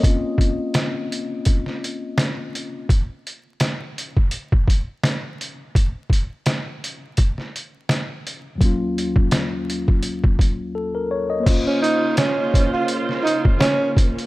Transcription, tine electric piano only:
0.00 2.82 A#3 medium
0.00 2.84 C4 medium
0.00 2.85 C#4 medium
0.00 0.21 D#5 medium
0.07 2.87 F4 medium
8.56 11.40 D#2 medium
8.56 11.41 F#3 medium
8.61 11.39 A#3 medium
8.61 11.44 C#4 medium
8.65 11.45 F4 medium
10.75 10.94 A4 medium
10.95 11.10 A#4 medium
11.11 11.30 C#5 medium
11.30 11.64 D#5 medium
11.40 14.25 A#3 medium
11.40 14.26 C5 medium
11.47 14.26 C#4 medium
11.47 14.26 F4 medium

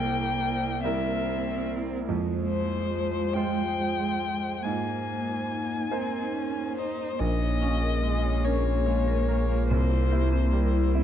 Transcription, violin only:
0.00 0.82 G5 medium
0.83 1.64 E5 medium
2.48 3.35 C5 medium
3.34 4.64 G5 medium
4.62 6.76 G#5 medium
6.77 7.21 C5 medium
7.20 8.46 D#5 medium
8.44 9.68 C#5 medium
9.69 11.04 C5 medium

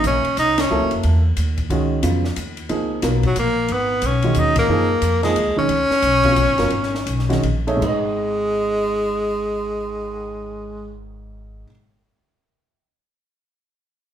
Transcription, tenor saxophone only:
0.07 0.36 C#4 medium
0.39 0.62 D#4 loud
0.60 0.93 C#4 medium
3.27 3.37 F#3 medium
3.39 3.74 A#3 medium
3.73 4.07 B3 medium
4.06 4.41 C#4 medium
4.39 4.58 D#4 loud
4.58 5.20 A#3 medium
5.24 5.54 G#3 medium
5.58 7.40 C#4 loud
7.83 10.93 G#3 medium

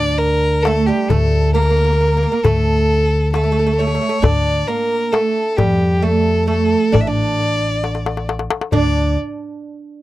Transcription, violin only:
0.00 0.19 D5 loud
0.18 0.64 A#4 loud
0.62 0.88 A4 medium
0.86 1.10 G4 medium
1.08 1.52 A4 medium
1.53 2.44 A#4 medium
2.43 3.32 A4 medium
3.32 3.80 A4 medium
3.78 4.25 C#5 medium
4.23 4.69 D5 medium
4.68 5.13 A#4 medium
5.12 5.58 A4 medium
5.57 6.04 G4 medium
6.03 6.48 A4 medium
6.48 6.95 A4 medium
6.93 7.02 D5 medium
7.01 7.09 E5 medium
7.07 8.28 D5 medium
8.73 9.15 D5 medium

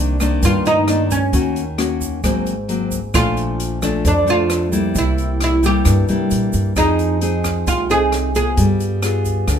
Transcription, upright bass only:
0.00 0.39 C2 medium
0.43 1.29 G2 medium
1.33 2.20 D#2 loud
2.24 3.10 G#1 medium
3.14 4.01 A#1 loud
4.05 4.91 F2 medium
4.95 5.82 C2 loud
5.86 6.07 G2 medium
6.09 6.29 C3 medium
6.31 6.52 A#2 medium
6.54 6.74 G2 medium
6.76 7.63 F2 medium
7.67 8.53 C2 medium
8.57 9.44 G2 loud
9.48 9.59 D2 medium

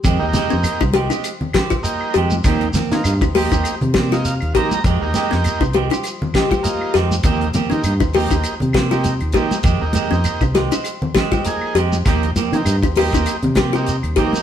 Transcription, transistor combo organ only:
0.19 0.82 A#3 medium
0.19 0.82 D#4 medium
0.19 0.82 G4 medium
1.83 2.15 A#3 medium
1.83 2.15 D#4 medium
1.83 2.16 G4 loud
2.44 2.68 A#3 medium
2.44 2.69 D#4 medium
2.44 2.69 G4 medium
2.91 3.14 A#3 medium
2.91 3.14 D#4 medium
2.91 3.14 F4 medium
3.36 3.75 A#3 medium
3.36 3.75 D#4 medium
3.36 3.76 G4 medium
3.96 4.11 D5 medium
4.13 4.34 A#3 medium
4.13 4.34 D#4 medium
4.13 4.35 F4 medium
4.13 4.25 D#5 medium
4.26 4.53 F5 medium
4.56 4.79 A#3 medium
4.56 4.80 D#4 medium
4.56 4.80 G4 loud
4.56 4.83 A#5 medium
5.01 5.63 A#3 medium
5.01 5.63 D#4 medium
5.01 5.64 G4 loud
6.63 6.95 A#3 medium
6.63 6.96 D#4 medium
6.63 6.95 F4 medium
7.24 7.49 A#3 medium
7.24 7.49 D#4 medium
7.24 7.49 G4 medium
7.70 7.93 A#3 medium
7.70 7.94 D#4 medium
7.70 7.94 G4 medium
8.15 8.55 A#3 medium
8.15 8.55 D#4 medium
8.15 8.55 G4 medium
8.90 9.13 A#3 medium
8.90 9.14 D#4 medium
8.90 9.14 G4 medium
9.34 9.58 A#3 medium
9.34 9.59 D#4 medium
9.34 9.59 G4 medium
9.81 10.43 A#3 medium
9.81 10.44 D#4 medium
9.81 10.44 G4 medium
11.46 11.77 A#3 medium
11.46 11.77 D#4 medium
11.46 11.77 G#4 medium
12.07 12.30 A#3 medium
12.07 12.31 D#4 medium
12.07 12.31 G4 medium
12.55 12.76 A#3 medium
12.55 12.76 D#4 medium
12.55 12.77 G4 medium
12.97 13.36 A#3 medium
12.97 13.37 D#4 medium
12.97 13.37 G4 medium
13.75 13.96 A#3 medium
13.75 13.97 D#4 medium
13.75 13.97 G4 medium
14.17 14.41 A#3 medium
14.17 14.41 D#4 medium
14.17 14.42 G4 medium

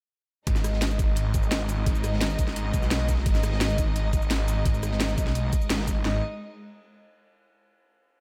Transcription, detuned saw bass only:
0.47 0.98 G#1 medium
0.99 1.33 G#1 loud
1.34 1.85 G#1 loud
1.86 2.37 G#1 loud
2.39 2.72 G#1 loud
2.74 3.25 B1 loud
3.26 3.77 G#1 loud
3.78 4.12 G#1 loud
4.13 4.64 G#1 loud
4.66 5.16 G#1 medium
5.18 5.51 B1 loud
5.70 6.04 G#1 loud
6.05 6.21 G#1 loud

